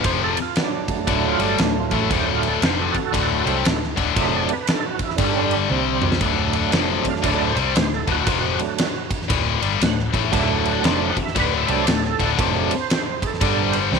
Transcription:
0.01 fingered electric bass F1, distorted electric guitar F2, tonewheel organ B4, kick, ride
0.05 distorted electric guitar C3 F3, tonewheel organ C5
0.24 tonewheel organ A4
0.37 ride
0.42 tonewheel organ F4
0.56 tonewheel organ F#3, snare, ride
0.60 tonewheel organ D4
0.88 tonewheel organ F#3 A3 D4, kick, ride
1.07 fingered electric bass D1, distorted electric guitar D2 A2 D3, kick, ride
1.12 tonewheel organ D4
1.28 tonewheel organ F4
1.39 fingered electric bass G1, distorted electric guitar G2 D3 G3, ride
1.45 tonewheel organ A4
1.58 fingered electric bass D1, distorted electric guitar D2 A2, tonewheel organ D4, snare, ride
1.80 tonewheel organ F4
1.91 fingered electric bass A1, distorted electric guitar A2 E3 A3, tonewheel organ A4, kick, ride
2.10 fingered electric bass D1, distorted electric guitar D2 A2 D3, tonewheel organ F#3 A3 D4 C5, kick, ride
2.28 tonewheel organ F4
2.43 ride
2.47 tonewheel organ A4
2.62 fingered electric bass F1, distorted electric guitar F2 C3 F3, snare, ride
2.66 tonewheel organ C5
2.81 tonewheel organ F#4 A4
2.94 muted distorted electric guitar stroke, kick, ride
3.13 fingered electric bass D1, distorted electric guitar D2 A2 D3, kick, ride
3.45 fingered electric bass C2, distorted electric guitar C3 G3 C4, tonewheel organ F#3 A3 D4, ride
3.65 fingered electric bass D1, distorted electric guitar D2 A2, snare, ride
3.83 snare
3.97 fingered electric bass D1, distorted electric guitar D2 A2 D3, kick, ride
4.16 fingered electric bass F1, distorted electric guitar F2 C3 F3, tonewheel organ F#3 A3 D4 E5, kick, ride
4.36 tonewheel organ D5
4.49 tonewheel organ B4, ride
4.67 tonewheel organ A4, snare, ride
4.86 tonewheel organ F#4
4.99 kick, ride
5.03 tonewheel organ E4
5.10 snare
5.16 fingered electric bass G1, distorted electric guitar G2 D3, tonewheel organ D3 G3 D4, kick, ride
5.20 distorted electric guitar G3
5.35 tonewheel organ C#4 D4
5.51 ride
5.69 fingered electric bass C2, distorted electric guitar C3 G3 C4, tonewheel organ C3 G3 C4, high tom
6.02 mid tom
6.12 snare
6.21 fingered electric bass D1, distorted electric guitar D2 A2 D3, tonewheel organ F#3 A3 D4, kick, ride
6.53 ride
6.72 fingered electric bass F1, distorted electric guitar F2 C3 F3, snare, ride
7.04 muted distorted electric guitar stroke, muted fingered electric bass stroke, kick, ride
7.10 tonewheel organ F5
7.16 snare
7.23 fingered electric bass D1, distorted electric guitar D2 A2 D3, tonewheel organ F#3 A3 D4 D5, kick, ride
7.44 tonewheel organ C5
7.56 fingered electric bass C2, distorted electric guitar C3 G3 C4, ride
7.61 tonewheel organ D5
7.76 fingered electric bass D1, distorted electric guitar D2 A2, tonewheel organ C5, snare, ride
7.92 tonewheel organ A4, snare
8.07 fingered electric bass D1, distorted electric guitar D2 A2 D3, kick, ride
8.12 tonewheel organ F#4
8.26 fingered electric bass F1, distorted electric guitar F2 C3 F3, kick, ride
8.58 tonewheel organ F#3 A3 D4, ride
8.78 snare, ride
9.11 kick, ride
9.22 snare
9.29 fingered electric bass D1, distorted electric guitar D2 A2 D3, kick, ride
9.62 fingered electric bass G1, distorted electric guitar G2 D3 G3, ride
9.81 fingered electric bass D1, distorted electric guitar D2 A2, tonewheel organ F#5, snare, ride
9.99 snare
10.14 fingered electric bass A1, distorted electric guitar A2 E3 A3, kick, ride
10.32 fingered electric bass D1, distorted electric guitar D2 A2 D3, tonewheel organ F#3 A3 D4 E5, kick, ride
10.66 tonewheel organ F#5, ride
10.84 fingered electric bass F1, distorted electric guitar F2 C3 F3, tonewheel organ D5, snare, ride
11.06 tonewheel organ F#5
11.17 muted distorted electric guitar stroke, kick, ride
11.23 tonewheel organ E5
11.27 snare
11.36 fingered electric bass D1, distorted electric guitar D2 A2 D3, kick, ride
11.40 tonewheel organ B4
11.58 tonewheel organ E5
11.68 fingered electric bass C2, distorted electric guitar C3 G3 C4, tonewheel organ F#3 A3 D4, ride
11.73 tonewheel organ D5
11.87 fingered electric bass D1, distorted electric guitar D2 A2, tonewheel organ A4, snare, ride
12.02 tonewheel organ G#4, snare
12.07 tonewheel organ A4
12.19 fingered electric bass D1, distorted electric guitar D2 A2 D3, kick, ride
12.38 fingered electric bass F1, distorted electric guitar F2 C3 F3, tonewheel organ F#3 A3 D4, kick, ride
12.71 ride
12.75 tonewheel organ C5
12.90 snare, ride
13.22 tonewheel organ G#4, kick, ride
13.27 tonewheel organ A4
13.34 snare
13.41 fingered electric bass G1, distorted electric guitar G2 D3 G3, tonewheel organ D3 G3 D4, kick, ride
13.62 tonewheel organ C5
13.73 tonewheel organ B4, ride
13.79 tonewheel organ C5
13.92 fingered electric bass C2, tonewheel organ C3 G3 C4, distorted electric guitar C3 G3 C4, snare

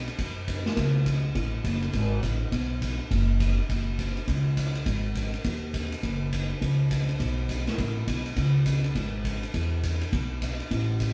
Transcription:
0.08 ride
0.18 upright bass F#2, kick, ride
0.48 kick, hi-hat pedal, ride
0.66 snare
0.77 upright bass C#2, kick, ride
1.06 kick, hi-hat pedal, ride
1.35 upright bass A1, kick, ride
1.64 upright bass F#1, kick, hi-hat pedal, ride
1.82 ride
1.93 upright bass G#1, kick, ride
2.23 upright bass A1, kick, hi-hat pedal, ride
2.52 upright bass B1, kick, ride
2.82 kick, hi-hat pedal, ride
3.11 upright bass F#1, kick, ride
3.40 kick, hi-hat pedal, ride
3.69 upright bass F#1, kick, ride
3.99 kick, hi-hat pedal, ride
4.17 ride
4.28 upright bass C#2, kick, ride
4.57 kick, hi-hat pedal, ride
4.75 ride
4.86 upright bass G#1, kick, ride
5.15 kick, hi-hat pedal, ride
5.34 ride
5.44 upright bass D#2, kick, ride
5.74 kick, hi-hat pedal, ride
5.92 ride
6.03 upright bass F#1, kick, ride
6.32 kick, hi-hat pedal, ride
6.61 upright bass C#2, kick, ride
6.91 kick, hi-hat pedal, ride
7.09 ride
7.20 upright bass B1, kick, ride
7.49 kick, hi-hat pedal, ride
7.67 snare, ride
7.78 upright bass A1, kick, ride
8.07 upright bass B1, kick, hi-hat pedal, ride
8.26 ride
8.36 upright bass C#2, kick, ride
8.66 kick, hi-hat pedal, ride
8.84 ride
8.95 upright bass G#1, kick, ride
9.25 kick, hi-hat pedal, ride
9.43 ride
9.54 upright bass E2, kick, ride
9.83 kick, hi-hat pedal, ride
10.01 ride
10.13 upright bass B1, kick, ride
10.42 kick, hi-hat pedal, ride
10.60 ride
10.71 upright bass A1, kick, ride
11.00 kick, hi-hat pedal, ride

